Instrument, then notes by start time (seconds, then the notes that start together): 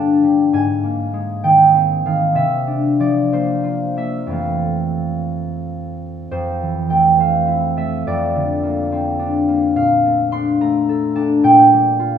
harp
Already playing: G2 D3 G3 A#3 D4 F5 A5
0.24 G3
0.53 G#2 G#5
0.84 A#3
1.13 G#3
1.44 D#3 G5
1.74 C4
2.06 D#3 F5
2.35 C3 E5
2.67 D4
3.00 F3 D5
3.32 A#3 C5
3.63 F4
3.97 A#3 E5
4.27 F2 E3 A3
4.31 C4 F5
6.31 F2 C5
6.63 E3
6.90 A3 G5
7.20 C4 F5
7.47 E4
7.77 A3 E5
8.07 F2 D5
8.35 D3
8.63 A#3
8.92 C4
9.19 D4
9.48 A#3
9.76 A#2 F5
10.06 A3
10.32 D4 C6
10.61 A3 A#5
10.89 A4
11.16 D4 A5
11.43 A#2 G5
11.73 G3
11.99 F4